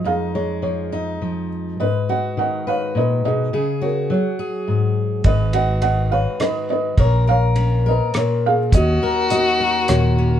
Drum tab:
RD |------|------|------|xxx-x-|
HH |------|------|------|------|
SD |------|------|------|----r-|
BD |------|------|------|o-----|

RD |x-x-x-|------|
HH |------|x-x-x-|
SD |----r-|----r-|
BD |o-----|o-----|